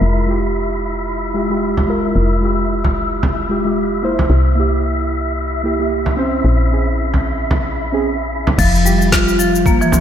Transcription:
0.00 2.14 F1 medium
0.00 0.25 G#3 medium
0.00 8.60 E4 medium
0.00 0.25 F4 medium
0.00 0.26 A#4 medium
0.00 8.60 E5 medium
0.26 1.32 G#3 medium
0.26 1.33 F4 medium
0.30 1.34 G4 medium
1.34 1.47 G#3 medium
1.34 1.47 F4 medium
1.34 1.48 G4 medium
1.50 1.86 G#3 medium
1.50 1.86 F4 medium
1.50 1.87 G4 medium
1.77 frame drum medium
1.88 2.39 G#3 medium
1.88 2.40 F4 medium
1.88 2.40 A#4 medium
2.16 4.28 F1 medium
2.40 3.46 G#3 medium
2.40 3.47 F4 medium
2.45 3.48 G4 medium
2.84 frame drum medium
3.23 frame drum medium
3.49 3.61 G#3 medium
3.49 3.62 F4 medium
3.49 3.62 G4 medium
3.65 4.00 G#3 medium
3.65 4.01 F4 medium
3.65 4.01 G4 medium
4.02 4.54 A#3 medium
4.02 4.54 E4 medium
4.02 4.55 C5 medium
4.19 frame drum medium
4.30 6.42 C2 medium
4.55 5.61 A#3 medium
4.55 5.62 E4 medium
4.60 5.63 G4 medium
5.64 5.76 A#3 medium
5.64 5.76 E4 medium
5.64 5.77 G4 medium
5.79 6.15 A#3 medium
5.79 6.15 E4 medium
5.79 6.16 G4 medium
6.06 frame drum medium
6.17 6.68 C4 medium
6.17 6.69 C#4 medium
6.17 6.69 C5 medium
6.44 8.57 A#1 medium
6.69 7.75 C4 medium
6.69 7.76 C#4 medium
6.74 7.77 G#4 medium
7.14 frame drum medium
7.51 frame drum medium
7.92 8.03 C4 medium
7.92 8.04 C#4 medium
7.92 8.04 G#4 medium
8.47 frame drum medium
8.58 10.00 F1 loud
8.58 8.73 F3 medium
8.58 10.00 C4 medium
8.58 10.00 C5 medium
8.58 kick loud
8.58 crash loud
8.58 shaker soft
8.75 shaker soft
8.85 9.11 G3 medium
8.85 9.90 F4 medium
8.85 9.91 G4 medium
8.85 shaker medium
9.02 shaker soft
9.12 9.38 F4 medium
9.12 kick loud
9.12 snare loud
9.12 shaker soft
9.28 shaker soft
9.39 9.54 F3 medium
9.39 shaker medium
9.55 shaker soft
9.66 9.81 A#3 loud
9.66 kick loud
9.66 shaker soft
9.81 10.00 E3 loud
9.81 shaker soft
9.92 frame drum medium
9.92 shaker medium

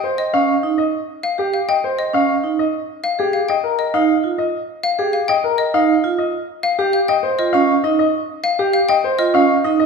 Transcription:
0.04 0.23 C5 medium
0.18 0.38 D#5 medium
0.34 0.53 C#4 medium
0.34 0.53 F5 medium
0.63 0.83 D#4 medium
0.78 0.98 D#5 medium
1.23 1.43 F5 medium
1.38 1.58 G4 medium
1.54 1.73 F5 medium
1.69 1.88 D#5 medium
1.69 1.88 G5 medium
1.84 2.03 C5 medium
1.99 2.18 D#5 medium
2.13 2.33 C#4 medium
2.13 2.33 F5 medium
2.44 2.63 D#4 medium
2.59 2.78 D#5 medium
3.04 3.23 F5 medium
3.19 3.38 G4 medium
3.19 3.38 G#4 medium
3.33 3.53 F5 medium
3.49 3.68 D#5 medium
3.49 3.68 G5 medium
3.64 3.83 A#4 medium
3.79 3.98 D#5 medium
3.94 4.13 D#4 medium
3.94 4.13 F5 medium
4.24 4.43 F4 medium
4.38 4.58 D#5 medium
4.83 5.03 F5 medium
4.99 5.18 G4 medium
4.99 5.18 G#4 medium
5.13 5.33 F5 medium
5.28 5.48 D#5 medium
5.28 5.48 G5 medium
5.44 5.63 A#4 medium
5.58 5.78 D#5 medium
5.74 5.93 D#4 medium
5.74 5.93 F5 medium
6.04 6.23 F4 medium
6.18 6.38 D#5 medium
6.63 6.83 F5 medium
6.79 6.98 G4 medium
6.93 7.13 F5 medium
7.08 7.28 D#5 medium
7.08 7.28 G5 medium
7.23 7.43 C5 medium
7.39 7.58 F4 medium
7.39 7.58 D#5 medium
7.53 7.73 C#4 medium
7.53 7.73 F5 medium
7.84 8.03 D#4 medium
7.84 7.98 D#5 medium
7.99 8.18 D#5 medium
8.44 8.63 F5 medium
8.59 8.78 G4 medium
8.73 8.93 F5 medium
8.89 9.08 D#5 medium
8.89 9.08 G5 medium
9.04 9.23 C5 medium
9.19 9.38 F4 medium
9.19 9.38 D#5 medium
9.34 9.53 C#4 medium
9.34 9.53 F5 medium
9.64 9.83 D#4 medium
9.64 9.78 D#5 medium
9.80 9.86 D#5 medium

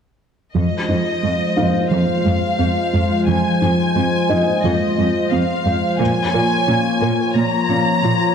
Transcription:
0.54 0.63 F2 soft
0.54 0.75 F3 medium
0.54 5.96 F3 medium
0.54 5.96 G#3 soft
0.54 5.96 F4 soft
0.54 5.96 C5 medium
0.54 1.87 D#5 medium
0.89 0.98 F2 soft
0.89 1.09 D#4 soft
1.23 1.32 F2 soft
1.23 1.43 G#3 soft
1.57 1.66 F2 soft
1.57 1.77 D#4 soft
1.57 3.57 F5 soft
1.91 1.99 F2 soft
1.91 2.12 F3 medium
1.91 3.25 F5 medium
2.25 2.34 F2 soft
2.25 2.45 G#3 soft
2.59 2.68 F2 soft
2.59 2.80 C4 soft
2.93 3.02 F2 soft
2.93 3.14 G#3 soft
3.27 3.36 F2 soft
3.27 3.48 F3 medium
3.27 4.61 G#5 medium
3.62 3.71 F2 soft
3.62 3.82 D#4 soft
3.96 4.04 F2 soft
3.96 4.16 G#3 soft
4.30 4.39 F2 soft
4.30 4.50 D#4 soft
4.30 6.30 D#5 soft
4.63 4.72 F2 soft
4.63 4.84 F3 medium
4.63 5.32 D#5 soft
4.98 5.06 F2 soft
4.98 5.18 G#3 soft
5.32 5.40 F2 soft
5.32 5.52 C4 soft
5.32 6.00 F5 medium
5.66 5.74 F2 soft
5.66 5.86 G#3 soft
6.00 6.08 A#2 soft
6.00 8.35 F3 soft
6.00 6.20 A#3 medium
6.00 8.35 A#3 soft
6.00 8.35 F4 medium
6.00 8.35 C#5 medium
6.00 7.36 G#5 medium
6.34 6.42 A#2 soft
6.34 6.55 A#4 medium
6.68 6.76 A#2 soft
6.68 6.89 C#4 soft
7.01 7.09 A#2 soft
7.01 7.22 A#4 medium
7.35 7.43 A#2 soft
7.35 7.57 A#3 medium
7.35 8.35 A#5 medium
7.69 7.77 A#2 soft
7.69 7.91 C#4 soft
8.04 8.12 A#2 soft
8.04 8.25 F4 soft

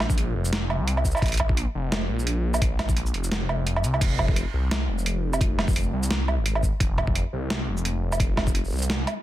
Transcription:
0.00 0.34 A#1 loud
0.00 snare medium
0.00 low woodblock medium
0.10 kick loud
0.10 shaker medium
0.18 closed hi-hat medium
0.35 0.81 F1 medium
0.45 shaker medium
0.53 snare loud
0.53 closed hi-hat medium
0.70 low woodblock medium
0.80 1.13 C2 medium
0.88 closed hi-hat medium
0.97 low woodblock medium
1.05 kick medium
1.05 shaker medium
1.11 low woodblock soft
1.11 shaker medium
1.17 low woodblock soft
1.17 shaker soft
1.19 1.66 A#1 loud
1.19 kick loud
1.19 closed hi-hat soft
1.19 low woodblock soft
1.24 closed hi-hat soft
1.24 low woodblock soft
1.27 closed hi-hat soft
1.27 low woodblock soft
1.29 closed hi-hat medium
1.29 low woodblock soft
1.34 closed hi-hat medium
1.37 kick medium
1.37 closed hi-hat medium
1.37 low woodblock medium
1.49 kick loud
1.57 closed hi-hat medium
1.75 2.11 F1 medium
1.92 snare loud
1.92 closed hi-hat medium
1.92 low woodblock medium
2.09 3.13 A#1 loud
2.19 shaker soft
2.27 closed hi-hat medium
2.54 low woodblock medium
2.54 shaker medium
2.62 kick loud
2.62 closed hi-hat medium
2.79 kick medium
2.79 snare medium
2.79 closed hi-hat soft
2.79 low woodblock medium
2.89 kick loud
2.89 shaker medium
2.97 closed hi-hat medium
3.06 shaker soft
3.14 3.48 F1 medium
3.14 closed hi-hat soft
3.24 shaker medium
3.32 snare loud
3.32 closed hi-hat medium
3.49 3.85 F1 medium
3.49 low woodblock medium
3.67 closed hi-hat medium
3.76 low woodblock medium
3.84 4.00 C2 medium
3.84 closed hi-hat soft
3.84 shaker medium
3.94 low woodblock medium
4.01 4.45 F1 loud
4.01 kick loud
4.01 closed hi-hat medium
4.01 crash medium
4.19 kick medium
4.19 low woodblock medium
4.28 kick loud
4.36 closed hi-hat medium
4.54 4.90 C2 medium
4.71 snare loud
4.71 closed hi-hat medium
4.71 low woodblock medium
4.88 5.92 F1 loud
4.98 shaker soft
5.06 closed hi-hat medium
5.33 low woodblock medium
5.33 shaker medium
5.41 kick loud
5.41 closed hi-hat medium
5.59 snare medium
5.59 low woodblock medium
5.68 kick loud
5.68 shaker medium
5.70 shaker medium
5.73 shaker soft
5.75 closed hi-hat medium
5.75 shaker soft
5.77 shaker soft
5.80 shaker soft
5.83 shaker soft
5.93 6.39 C2 medium
6.03 shaker medium
6.11 snare loud
6.11 closed hi-hat medium
6.28 low woodblock medium
6.38 6.71 G#1 medium
6.46 closed hi-hat medium
6.55 low woodblock medium
6.63 kick medium
6.63 shaker medium
6.80 7.24 F1 loud
6.80 kick loud
6.80 closed hi-hat medium
6.98 kick medium
6.98 low woodblock medium
7.07 kick loud
7.15 closed hi-hat medium
7.33 7.69 C2 medium
7.50 snare loud
7.50 closed hi-hat medium
7.50 low woodblock medium
7.68 8.71 F1 loud
7.77 shaker soft
7.85 closed hi-hat medium
8.12 low woodblock medium
8.12 shaker medium
8.20 kick loud
8.20 closed hi-hat medium
8.37 kick medium
8.37 snare medium
8.37 low woodblock medium
8.47 kick loud
8.47 shaker medium
8.55 closed hi-hat medium
8.65 shaker soft
8.67 shaker soft
8.70 9.06 C2 medium
8.70 shaker soft
8.72 shaker soft
8.76 shaker soft
8.78 shaker soft
8.82 shaker medium
8.90 snare loud
8.90 closed hi-hat medium
9.07 closed hi-hat soft
9.07 low woodblock medium

